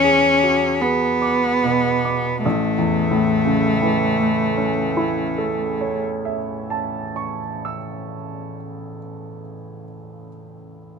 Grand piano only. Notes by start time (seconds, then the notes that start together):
Already playing: E2 D6
0.04 G#4
0.43 F#4
0.81 G#4
1.22 D6
1.64 B2
2.05 D6
2.45 A1
2.79 E2
3.10 A2
3.45 C#3
3.82 E3
4.18 A3
4.57 C#4
4.97 E4
5.38 A4
5.81 C#5
6.25 E5
6.70 A5
7.16 C#6
7.65 E6